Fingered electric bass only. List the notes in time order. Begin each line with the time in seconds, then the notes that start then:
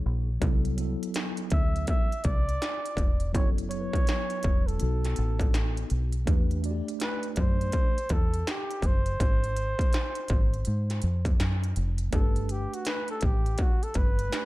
0.06 A#1
0.42 C2
1.52 D2
2.25 C2
2.97 E1
3.35 F#1
4.45 E1
4.82 B1
5.18 A1
5.91 B1
6.28 E2
7.37 F#2
8.10 E2
8.83 F#1
9.20 G#1
10.30 G#1
10.67 G#2
11.03 F2
11.40 F#2
11.77 F1
12.13 G1
13.23 A1
13.96 G1